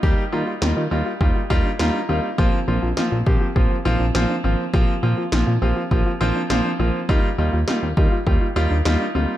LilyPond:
<<
  \new Staff \with { instrumentName = "Synth arpeggio sound" } { \time 4/4 \key bes \major \tempo 4 = 102 g'8 f'16 f'16 ees'16 f'16 g'16 f'16 g'16 f'16 ees'16 d'16 ees'16 d'16 c'8 | g'8 f'16 f'16 ees'16 f'16 g'16 f'16 g'16 f'16 ees'16 d'16 ees'16 d'16 c'8 | g'8 f'16 f'16 ees'16 f'16 g'16 f'16 g'16 f'16 ees'16 d'16 ees'16 d'16 c'8 | g'8 f'16 f'16 ees'16 f'16 g'16 f'16 g'16 f'16 ees'16 d'16 ees'16 d'16 c'8 | }
  \new Staff \with { instrumentName = "Grand piano" } { \time 4/4 \key bes \major <g bes ees' g'>8 <g bes ees' f'>8 <g bes ees' f'>8 <g bes ees' f'>8 <g bes ees' f'>8 <g bes ees' f'>8 <g bes ees' f' bes''>8 <g bes ees' f' f''>8 | <f bes c' f'>8 <f bes c' f'>8 <f bes c' f'>8 <f bes c' g'>8 <f bes c' f'>8 <f bes c' f'>8 <f bes c' f'>8 <f bes c' f'>8 | <f bes c' f'>8 <f bes c' f'>8 <f bes c' f'>8 <f bes c' f'>8 <f bes c' f'>8 <f bes c' f'>8 <f bes c' f'>8 <f bes c' f'>8 | <g bes ees' f'>8 <g bes ees' f'>8 <g bes ees' f'>8 <g bes ees' f'>8 <g bes ees' f'>8 <g bes ees' f'>8 <g bes ees' f'>8 <g bes ees' f'>8 | }
  \new Staff \with { instrumentName = "Analog synth bass" } { \clef bass \time 4/4 \key bes \major ees,16 r16 ees16 r16 ees,16 ees16 ees,16 r16 ees,16 r16 ees,16 r16 ees,16 r16 ees,16 r16 | bes,,16 r16 bes,,16 bes,,16 r16 bes,,16 bes,,16 r16 bes,,16 r16 bes,,16 bes,,16 bes,,16 r16 aes,,16 r16 | bes,,16 r16 bes,16 r16 bes,,16 bes,16 bes,,16 r16 bes,,16 r16 bes,,16 r16 bes,,16 r16 bes,,16 r16 | ees,16 r16 ees,16 ees,16 r16 ees,16 ees,16 r16 ees,16 r16 ees,16 ees,16 ees,16 r16 d,16 r16 | }
  \new DrumStaff \with { instrumentName = "Drums" } \drummode { \time 4/4 bd4 sn4 bd8 bd8 sn4 | bd4 sn8 bd8 bd4 sn4 | bd4 sn4 bd4 sn4 | bd4 sn8 bd8 bd4 sn4 | }
>>